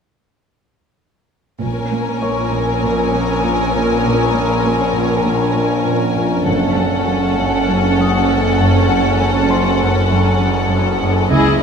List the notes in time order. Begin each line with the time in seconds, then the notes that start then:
1.62 A#1 A#2 C#4 A#4 G#5
1.93 A#3
2.22 A#3 C#5 C#6
2.53 A#2
2.83 A#2
3.14 A#3
3.44 A#2
3.74 A#2
4.04 A#2
4.33 A#3
4.64 A#3
4.94 A#2
5.24 A#2
5.55 A#3
5.85 A#2
6.17 A#2
6.46 F#1 F#2 C#4 A4 F#5
6.77 F#3
7.07 F#3
7.38 F#2
7.68 F#2
7.98 F#3 D#6
8.28 F#2
8.59 F#2
8.89 F#2
9.20 F#3
9.50 F#3 C5 C6
9.80 F#2
10.10 F#2
10.41 F#3
10.71 F#2
11.01 F#2
11.31 C#2 C#3 E4 G#4 D#5